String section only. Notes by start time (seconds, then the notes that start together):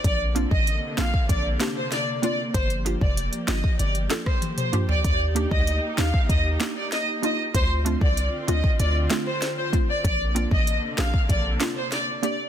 0.04 C3 D3 A#3
2.54 F3 G4
5.04 A#3 D#4
7.54 D3 C4 F4
10.04 C3 D3 A#3